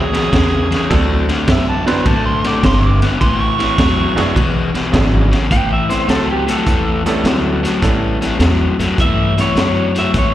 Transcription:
Already playing: upright bass D2, grand piano F#3 B3 D4 E4 G#4, harmonica G#4
0.13 overdriven electric guitar E2 B2, snare, ride
0.31 overdriven electric guitar E2 C#3, upright bass E2, kick, snare, ride
0.71 overdriven electric guitar E2 C#3, snare, ride
0.89 upright bass D2, overdriven electric guitar D3 A3, grand piano F#3 C4 D4 E4 A4, kick, snare, ride
1.29 overdriven electric guitar D3 A3, snare, ride
1.47 upright bass F#2, overdriven electric guitar D3 B3, harmonica E5, kick, snare, ride
1.69 harmonica A5
1.86 overdriven electric guitar D3 B3, grand piano F#3 C4 D4 E4 B4, harmonica C6, snare, ride
2.06 upright bass A2, overdriven electric guitar D3 A3, harmonica A5, kick, ride
2.26 harmonica C6
2.44 overdriven electric guitar D3 A3, harmonica D6, snare, ride
2.63 upright bass G1, overdriven electric guitar D3 B3, harmonica C6, kick, snare, ride
2.86 harmonica D6
3.02 overdriven electric guitar D3 B3, snare, ride
3.20 upright bass A1, overdriven electric guitar A2 E3, harmonica C6, kick, ride
3.41 harmonica C#6
3.58 overdriven electric guitar A2 E3, snare, ride
3.78 upright bass E2, overdriven electric guitar A2 F#3, kick, snare, ride
4.16 upright bass F#2, overdriven electric guitar A2 F#3, grand piano F#3 B3 D4 E4 G#4, snare, ride
4.34 upright bass E1, overdriven electric guitar E2 B2, kick, ride
4.74 overdriven electric guitar E2 B2, snare, ride
4.92 upright bass G#1, overdriven electric guitar E2 C#3, grand piano F#3 B3 D4 E4 G#4, kick, snare, ride
5.31 overdriven electric guitar E2 C#3, snare, ride
5.50 upright bass A1, overdriven electric guitar A2 E3, clean electric guitar G5, kick, closed hi-hat
5.73 clean electric guitar E5
5.88 overdriven electric guitar A2 E3, clean electric guitar C5, snare, closed hi-hat
6.07 upright bass C#2, overdriven electric guitar A2 F#3, clean electric guitar A4, snare, closed hi-hat
6.31 clean electric guitar G4
6.47 overdriven electric guitar A2 F#3, clean electric guitar A4, snare, closed hi-hat
6.66 upright bass E2, overdriven electric guitar A2 E3, kick, snare, closed hi-hat
7.06 overdriven electric guitar A2 E3, grand piano G3 B3 C#4 E4 A4, snare, closed hi-hat
7.24 upright bass D2, overdriven electric guitar A2 F#3, snare, closed hi-hat
7.63 overdriven electric guitar A2 F#3, snare, closed hi-hat
7.82 upright bass A1, overdriven electric guitar A2 E3, grand piano G3 B3 C#4 E4 A4, kick, snare, closed hi-hat
8.21 overdriven electric guitar A2 E3, snare, closed hi-hat
8.39 upright bass E2, overdriven electric guitar A2 F#3, snare, closed hi-hat
8.79 upright bass F#2, overdriven electric guitar A2 F#3, snare, closed hi-hat
8.98 upright bass G2, overdriven electric guitar A2 E3, clean electric guitar E5, kick, closed hi-hat
9.37 overdriven electric guitar A2 E3, clean electric guitar C#5, snare, closed hi-hat
9.55 upright bass F#2, overdriven electric guitar A2 F#3, snare, closed hi-hat
9.95 overdriven electric guitar A2 F#3, snare, closed hi-hat
9.99 clean electric guitar E5
10.14 upright bass A1, overdriven electric guitar A2 E3, kick, snare, closed hi-hat
10.18 clean electric guitar C#5

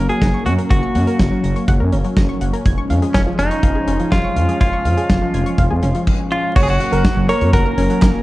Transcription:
Already playing: analog synth pad F#3 A#3 C#4
0.09 synth arpeggio sound F#3, clean electric guitar G#4, closed hi-hat
0.22 analog synth bass F#1, synth arpeggio sound A#6, kick, snare
0.34 synth arpeggio sound C#6
0.46 analog synth bass F#2, clean electric guitar F#4, synth arpeggio sound F#5, closed hi-hat
0.58 synth arpeggio sound A#4, closed hi-hat
0.70 analog synth bass F#1, clean electric guitar F#4, synth arpeggio sound A#6, kick, closed hi-hat
0.83 synth arpeggio sound C#6
0.95 analog synth bass F#2, synth arpeggio sound F#5, closed hi-hat
1.07 synth arpeggio sound A#4, closed hi-hat
1.19 analog synth bass F#1, kick, snare
1.31 synth arpeggio sound F#3
1.44 analog synth bass F#1, synth arpeggio sound A#6, closed hi-hat
1.56 synth arpeggio sound C#6, closed hi-hat
1.68 analog synth bass F#1, synth arpeggio sound F#5, kick, closed hi-hat
1.80 analog synth bass F#2, synth arpeggio sound A#4
1.92 analog synth bass F#1, synth arpeggio sound C#4, closed hi-hat
2.04 synth arpeggio sound F#3, closed hi-hat
2.17 analog synth bass F#1, synth arpeggio sound A#6, kick, snare
2.29 synth arpeggio sound C#6
2.41 analog synth bass F#1, synth arpeggio sound F#5, closed hi-hat
2.53 synth arpeggio sound A#4, closed hi-hat
2.65 analog synth bass F1, analog synth pad F3 G#3, synth arpeggio sound G#6, kick, closed hi-hat
2.78 synth arpeggio sound C#6
2.90 analog synth bass F2, synth arpeggio sound F5, closed hi-hat
3.02 synth arpeggio sound G#4, closed hi-hat
3.14 analog synth bass F1, clean electric guitar C#4, kick, snare
3.27 synth arpeggio sound F3
3.39 analog synth bass F1, clean electric guitar D#4, synth arpeggio sound G#6, closed hi-hat
3.51 synth arpeggio sound C#6, closed hi-hat
3.63 analog synth bass F1, synth arpeggio sound F5, kick, closed hi-hat
3.75 synth arpeggio sound G#4
3.88 analog synth bass F1, synth arpeggio sound C#4, closed hi-hat
4.00 synth arpeggio sound F3, closed hi-hat
4.12 analog synth bass F1, clean electric guitar F4, synth arpeggio sound G#6, kick, snare
4.24 synth arpeggio sound C#6
4.36 analog synth bass F2, synth arpeggio sound F5, closed hi-hat
4.49 synth arpeggio sound G#4, closed hi-hat
4.61 analog synth bass F1, clean electric guitar F4, synth arpeggio sound G#6, kick, closed hi-hat
4.73 synth arpeggio sound C#6
4.85 analog synth bass F2, synth arpeggio sound F5, closed hi-hat
4.97 synth arpeggio sound G#4, closed hi-hat
5.10 analog synth bass F1, kick, snare
5.22 synth arpeggio sound F3
5.34 analog synth bass F1, synth arpeggio sound G#6, closed hi-hat
5.46 synth arpeggio sound C#6, closed hi-hat
5.58 analog synth bass F1, synth arpeggio sound F5, kick, closed hi-hat
5.70 analog synth bass F2, synth arpeggio sound G#4
5.83 analog synth bass F1, synth arpeggio sound C#4, closed hi-hat
5.95 synth arpeggio sound F3, closed hi-hat
6.07 kick, crash
6.32 clean electric guitar F4
6.56 analog synth bass F#1, analog synth pad F#3 A#3 C#4, clean electric guitar F#4, grand piano C#5, synth arpeggio sound A#6, kick, crash
6.63 clean electric guitar G#4
6.68 analog synth bass F#1, clean electric guitar F#4, synth arpeggio sound C#6
6.80 synth arpeggio sound F#5, closed hi-hat
6.92 analog synth bass F#1, grand piano A#4, synth arpeggio sound A#4, closed hi-hat
7.05 kick, snare
7.17 analog synth bass F#1, synth arpeggio sound F#3
7.29 grand piano A#4, clean electric guitar C#5, synth arpeggio sound A#6, closed hi-hat
7.41 analog synth bass F#2, synth arpeggio sound C#6, closed hi-hat
7.53 analog synth bass F#1, clean electric guitar A#4, synth arpeggio sound F#5, kick, closed hi-hat
7.66 synth arpeggio sound A#4
7.78 analog synth bass F#1, synth arpeggio sound C#4, closed hi-hat
7.90 synth arpeggio sound F#3, closed hi-hat
8.02 analog synth bass F#1, kick, snare, clap

